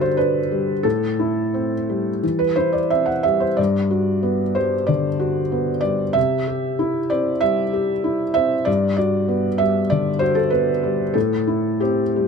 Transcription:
Already playing: G2 D3 G3 D4 F#4 A4 B4
0.01 C5
0.17 D4 B4
0.51 G3
0.83 A2 A4
1.19 E4
1.54 C4
1.89 G3
2.23 E3
2.39 B4
2.56 E4 C5
2.73 D5
2.90 C4 E5
3.06 F#5
3.23 G3 E5
3.40 C5
3.57 G2 D5
3.91 F#4
4.23 B3
4.55 G3 C5
4.87 D3 D5
5.19 F#4
5.52 B3
5.81 G3 D5
6.13 C3 E5
6.48 G4
6.79 E4
7.10 C4 D5
7.41 G3 E5
7.73 G4
8.04 E4
8.34 C4 E5
8.65 G2 D5
8.97 F#4 D5
9.28 B3
9.58 G3 E5
9.90 D3 D5
10.19 F#4 C5
10.35 A4
10.50 B3 B4
10.83 G3
11.14 A2 A4
11.47 E4
11.80 C4 G4
12.16 G3

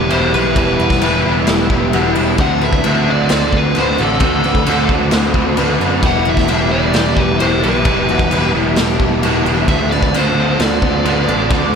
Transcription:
Already playing: B3 E4 G4 B4 E5 B5 D6
0.09 E1 E3 G3 B3 E4 F#4 C5, crash
0.32 B1 G3 B3 E4 B4
0.54 E1 E3 G3 B3 E4 E6, kick, crash
0.79 E1 G3 B3 E4 F#4
0.90 kick, snare
1.02 E1 E3 G3 B3 E4, crash
1.25 E1 G3 B3 E4
1.47 E1 G4, snare, crash
1.70 E1 G3 B3 E4, kick
1.93 E1 E3 G3 B3 E4 F#4, crash
2.16 E1 B3 E4
2.20 G3
2.38 D2 D3 A3 C4 F#4 A4 F#5 C6 D6, kick, crash
2.60 A3 C4 F#4 B4 E5
2.73 kick
2.84 D2 D3 A3 C4 F#4 A4, crash
3.06 A3 C4 F#4
3.10 D5
3.29 D2 C5, snare, crash
3.51 D2 A3 C4 F#4, kick
3.57 B4
3.75 D2 D3 A3 C4 F#4 B4 C5, crash
3.98 A1 A3 C4 F#4 A4
4.20 D2 D3 A3 C4 F#4 B5, kick, crash
4.43 D2 A3 C4 F#4 B4
4.55 kick
4.65 D2 D3 A3 C4 F#4 A4, crash
4.88 D2 A3 C4 F#4, kick
5.11 D2 C5, snare, crash
5.34 D2 A3 C4 F#4, kick
5.57 D2 D3 A3 C4 F#4 B4, crash
5.80 F#2 A3 C4 F#4 A4
6.03 E1 E3 G3 B3 E4 G4 E5 F#5, kick, crash
6.25 G3 B3 E4 F#4 E5
6.37 kick, snare
6.48 E1 E3 G3 B3 E4, crash
6.71 G3 B3 E4 D5
6.94 E1 G4, snare, crash
7.17 E1 G3 B3 E4 B4, kick
7.39 E1 E3 G3 B3 E4 F#4 C5, crash
7.63 B1 G3 B3 E4 B4
7.85 E1 E3 G3 B3 E4 A5, kick, crash
8.09 E1 G3 B3 E4 F#4
8.19 kick
8.31 E1 E3 G3 B3 E4, crash
8.54 E1 G3 B3 E4
8.76 E1 G4, snare, crash
9.00 E1 G3 B3 E4, kick
9.23 E1 E3 G3 B3 E4 F#4, crash
9.45 E1 G3 B3 E4
9.68 D2 D3 A3 C4 F#4 A4 E5 F#5 C6, kick, crash
9.91 A3 C4 F#4 B4 D5
10.02 kick
10.14 D2 D3 A3 C4 F#4 A4 C5, crash
10.36 A3 C4 F#4
10.59 D2 C5 D5, snare, crash
10.82 D2 A3 C4 F#4, kick
11.05 D2 D3 A3 C4 F#4 B4, crash
11.27 A1 A3 C4 F#4 A4
11.51 D2 D3 A3 C4 F#4, kick, crash

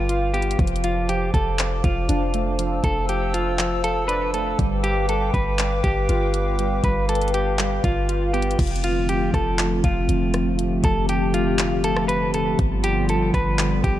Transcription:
Already playing: G1 G3 F4 B4 F5 G5 D6
0.09 F4, closed hi-hat
0.34 B3 G4, closed hi-hat
0.42 closed hi-hat
0.51 closed hi-hat
0.59 F1 F3 C5 A5 D6, kick, closed hi-hat
0.67 closed hi-hat
0.76 closed hi-hat
0.84 F3 F4, closed hi-hat
1.09 F3 G4, closed hi-hat
1.34 F1 A4, kick, closed hi-hat
1.59 F3, clap, closed hi-hat
1.84 F1 F3 F4, kick, closed hi-hat
2.09 F1 D4, closed hi-hat
2.34 A3, closed hi-hat
2.59 F3 E6, closed hi-hat
2.84 F1 F3 A4, kick, closed hi-hat
3.09 F3 G4, closed hi-hat
3.34 F4, closed hi-hat
3.59 F3, clap, closed hi-hat
3.84 F3 A4, closed hi-hat
4.08 D4 B4, closed hi-hat
4.34 A3 A4, closed hi-hat
4.59 G1 G3 B4 F5 G5 D6, kick, closed hi-hat
4.84 G3 G4, closed hi-hat
5.09 G3 A4, closed hi-hat
5.34 G1 B4, kick, closed hi-hat
5.59 G3, clap, closed hi-hat
5.84 G1 G3 G4, kick, closed hi-hat
6.09 G1 F4, closed hi-hat
6.34 B3, closed hi-hat
6.59 G3, closed hi-hat
6.84 G1 G3 B4, kick, closed hi-hat
7.09 G3 A4, closed hi-hat
7.15 closed hi-hat
7.22 closed hi-hat
7.28 closed hi-hat
7.34 G4, closed hi-hat
7.59 G3, clap, closed hi-hat
7.84 G1 G3 F4, kick, closed hi-hat
8.09 F4, closed hi-hat
8.34 B3 G4, closed hi-hat
8.42 closed hi-hat
8.51 closed hi-hat
8.59 F1 D3 F3 A3 C4 F4, kick, closed hi-hat, crash
8.67 closed hi-hat
8.76 closed hi-hat
8.84 F4, closed hi-hat
9.09 G4, closed hi-hat
9.34 F1 A4, kick, cross-stick, closed hi-hat
9.59 clap, closed hi-hat
9.84 F1 F4, kick, closed hi-hat
10.09 F1, closed hi-hat
10.34 cross-stick, closed hi-hat
10.59 G4, closed hi-hat
10.84 F1 A4, kick, closed hi-hat
11.09 G4, closed hi-hat
11.34 F4, closed hi-hat
11.59 clap, closed hi-hat
11.84 A4, closed hi-hat
11.97 cross-stick
12.08 B4, closed hi-hat
12.34 A4, closed hi-hat
12.59 G1 F3 G3 B3 F4, kick, closed hi-hat
12.84 G4, closed hi-hat
13.09 A4, closed hi-hat
13.34 G1 B4, kick, cross-stick, closed hi-hat
13.59 clap, closed hi-hat
13.84 G1 G4, kick, closed hi-hat

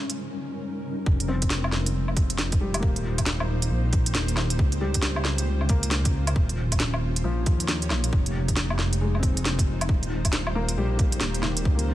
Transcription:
Already playing: G3 C#4 D#4 A#4
0.10 closed hi-hat
1.06 F1 G#3 D#4 F4 C5, kick
1.20 closed hi-hat
1.28 C4
1.42 kick, closed hi-hat
1.50 snare
1.64 low woodblock
1.72 snare
1.86 closed hi-hat
2.08 low woodblock
2.17 kick, closed hi-hat
2.30 closed hi-hat
2.38 snare
2.52 kick, closed hi-hat
2.61 G3
2.74 closed hi-hat, low woodblock
2.80 D#1 A#3 G4, kick
2.96 closed hi-hat
3.18 kick, closed hi-hat, low woodblock
3.26 snare
3.40 low woodblock
3.62 closed hi-hat
3.71 A#1
3.93 kick, closed hi-hat
4.06 closed hi-hat
4.15 D#1, snare
4.28 closed hi-hat
4.37 snare, low woodblock
4.50 closed hi-hat
4.59 C#2 C#4 F4, kick
4.72 closed hi-hat
4.81 G3
4.94 kick, closed hi-hat
5.02 snare
5.16 low woodblock
5.25 snare
5.38 closed hi-hat
5.61 low woodblock
5.69 A#3, kick, closed hi-hat
5.83 closed hi-hat
5.91 snare
6.05 kick, closed hi-hat
6.27 closed hi-hat, low woodblock
6.36 D#1 A#3 D#4 G4 C#5, kick
6.49 closed hi-hat
6.72 kick, closed hi-hat, low woodblock
6.80 snare
6.94 low woodblock
7.16 closed hi-hat
7.24 A#1 F3
7.46 D#2, kick, closed hi-hat
7.60 closed hi-hat
7.68 snare
7.82 closed hi-hat
7.90 A#1, snare, low woodblock
8.04 closed hi-hat
8.13 F1 G#3 F4 C5, kick
8.26 closed hi-hat
8.48 kick, closed hi-hat
8.56 snare
8.70 low woodblock
8.79 snare
8.93 closed hi-hat
9.01 G#3
9.15 low woodblock
9.19 C4, kick, closed hi-hat
9.37 closed hi-hat
9.45 snare
9.59 kick, closed hi-hat
9.81 closed hi-hat, low woodblock
9.88 D#1 A#3 G4, kick
10.03 closed hi-hat
10.25 kick, closed hi-hat, low woodblock
10.33 snare
10.47 low woodblock
10.55 A#3
10.69 closed hi-hat
10.77 A#1 G3
10.97 A#3, kick, closed hi-hat
11.12 closed hi-hat
11.21 D#1, snare
11.34 closed hi-hat
11.43 D#3, snare, low woodblock
11.57 closed hi-hat
11.61 C#2 G3, kick
11.75 A#3, closed hi-hat

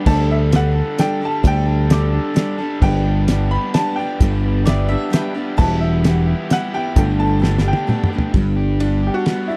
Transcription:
0.06 D2 D3 G3 D4 G4 A4 D5 A5, kick, crash
0.10 A4
0.28 G3 D4 A4 E5
0.51 D3 G3 D4 G4 A4 B4, snare, closed hi-hat
0.56 F#5
0.74 G3 D4 A4
0.98 G3 D4 G4 A4 D5 G5, snare, closed hi-hat
1.22 G3 D4 G4 A4 A5
1.43 D2 D3 G3 D4 G4 A4 G5, kick, closed hi-hat
1.66 G3 D4 A4
1.88 D3 G3 D4 G4 A4 D5, snare, closed hi-hat
1.92 G4 A4 D6
2.12 G3 D4 A4
2.34 G3 D4 G4 A4 D5, snare, closed hi-hat
2.58 G3 D4 G4 A4
2.82 G1 G2 D3 G3 B3 D4 G4 B4 D5 G5, kick, crash
3.04 G3 B3 D4 G4
3.28 G3 B3 D4 G4 B4 D5, snare, closed hi-hat
3.49 B3 D4 G4 B5
3.54 G3
3.73 G3 G4 B4 D5 A5, snare, closed hi-hat
3.77 B3 D4 B4
3.96 G4 B4 G5
4.00 G3 B3 D4
4.20 G1 G2 D3 G3 B3 D4 G4 B4, kick, closed hi-hat
4.43 G3 B3 D4 G4
4.65 G3 B3 D4 G4 B4 D5 E5, snare, closed hi-hat
4.88 G3 B3 D4 G4 B4 E5
5.10 G3 B3 D4 G4 B4 E5 G5, snare, closed hi-hat
5.34 G3 B3 D4 G4 B4
5.57 E1 E3 G3 B3 E4 G4 B4 E5 A5, kick, crash
5.80 B3 E4 G4 E5
6.02 E3 G3 B3 E4 G4 B4, snare, closed hi-hat
6.06 G4 F#5
6.26 B3 E4 G4
6.49 G3 B3 E4 G4 B4 E5 F#5, snare, closed hi-hat
6.53 G4
6.74 B3 E4 G4 G5
6.96 G1 G2 D3 G3 A3 B3 D4 G4 A4 B4 G5, kick, closed hi-hat
7.17 G3 B3 D4 G4 A5
7.39 G3 A3 B3 D4 G4 A4 B4 G5
7.44 snare
7.58 G4, snare
7.64 G3 B3 D4
7.68 G5
7.73 high tom
7.87 A3 B3 D4 G4 A4 B4 G5, mid tom
8.04 mid tom
8.13 G3 A3 B3 D4 G4
8.18 floor tom
8.34 G1 G2 D3 G3 B3 D4 G4, kick, ride
8.56 G4
8.80 G3 B3 D4, ride
8.84 G4
9.03 G4
9.07 G4
9.14 F#4
9.26 G3 B3 D4, snare, ride
9.31 G4
9.48 D4 E4 G4
9.52 G3 B3

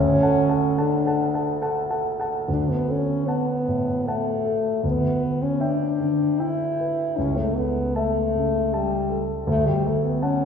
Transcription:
Already playing: D2 C#4
0.22 A4 F#5 A5
0.49 A4 F#5 A5
0.78 D4 A4 F#5 A5
1.07 A4 F#5 A5
1.34 A4 F#5 A5
1.62 A4 F#5 A5
1.90 A4 F#5 A5
2.20 A4 F#5 A5
2.48 D2 D4
2.69 B3
2.88 C#4 A4
3.28 B3 F#5 A5
3.68 A2
4.07 A3 F#5 A5
4.45 A4
4.84 D2 B3
5.21 B4
5.42 C#4
5.60 D4 E5 G5
6.00 D3
6.40 E4 E5 G5
6.79 B4
7.17 C#2 C#4
7.37 A3
7.56 B3 A4
7.95 A3 E5 A5
8.35 C#3
8.73 G3 E5 A5
9.09 A4
9.47 D2 A3
9.67 G3
9.85 A3 A4
10.04 B3
10.22 C#4 F#5 A5

